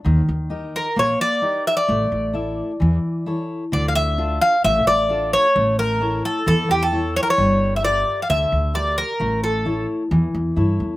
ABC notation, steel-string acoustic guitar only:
X:1
M:4/4
L:1/8
Q:1/4=131
K:Dm
V:1 name="Steel-string acoustic guitar"
_E,2 [_EGB]2 B,2 [EGB]2 | A,2 [EAe]2 E,2 [EA^c]2 | D,2 [DFA]2 A,2 [DFA]2 | A,2 [EA^c]2 E,2 [EAc]2 |
G,2 [GBd]2 D,2 [GBd]2 | A,2 [EA^c]2 E,2 [EAc]2 |]